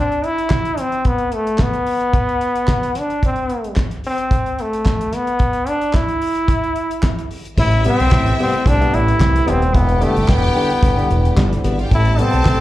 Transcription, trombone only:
0.00 0.27 D4 loud
0.25 0.81 E4 loud
0.79 1.09 C4 medium
1.07 1.36 B3 medium
1.35 1.63 A3 medium
1.62 3.00 B3 medium
2.99 3.24 D4 medium
3.25 3.75 C4 medium
4.07 4.63 C4 medium
4.61 5.17 A3 medium
5.15 5.70 B3 loud
5.68 5.97 D4 medium
5.95 7.31 E4 medium
7.60 7.84 E4 loud
7.87 8.36 C4 loud
8.41 8.69 C4 loud
8.68 8.96 D4 loud
8.95 9.51 E4 loud
9.49 9.77 C4 loud
9.75 10.05 B3 medium
10.03 10.32 A3 medium
10.31 11.65 B3 medium
11.92 12.22 E4 loud
12.21 12.61 C4 loud

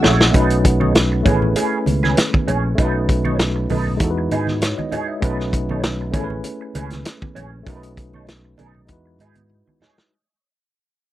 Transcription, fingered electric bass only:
0.04 0.31 A#1 medium
0.35 1.22 B1 loud
1.26 1.53 A1 medium
1.87 2.14 C#2 medium
2.48 2.75 A#1 medium
2.78 3.66 B1 loud
3.71 3.97 B1 medium
4.00 4.27 E2 medium
4.32 4.73 G#2 loud
5.23 6.14 B1 loud
6.14 6.41 A1 loud
6.75 7.02 C#2 loud
7.36 7.63 A#1 medium
7.67 8.54 B1 loud
8.59 8.86 B1 medium
8.89 9.20 E2 medium
9.20 9.62 G#2 medium

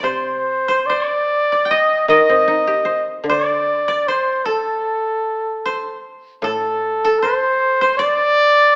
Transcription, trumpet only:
0.04 0.88 C5 medium
0.86 1.72 D5 medium
1.70 2.08 D#5 medium
2.08 3.23 D#5 medium
3.28 4.09 D5 medium
4.08 4.47 C5 medium
4.46 6.02 A4 medium
6.43 7.21 A4 medium
7.20 7.97 C5 medium
7.97 8.76 D5 loud

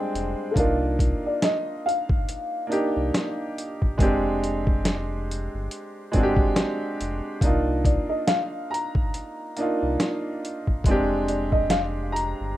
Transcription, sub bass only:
0.14 0.35 F1 loud
0.57 1.14 C2 loud
2.96 3.11 C2 medium
3.99 5.49 F1 loud
5.54 5.69 G1 medium
6.15 6.51 G1 medium
7.01 7.21 F1 loud
7.42 7.99 C2 loud
9.82 9.97 C2 medium
10.85 12.34 F1 loud
12.40 12.55 G1 medium

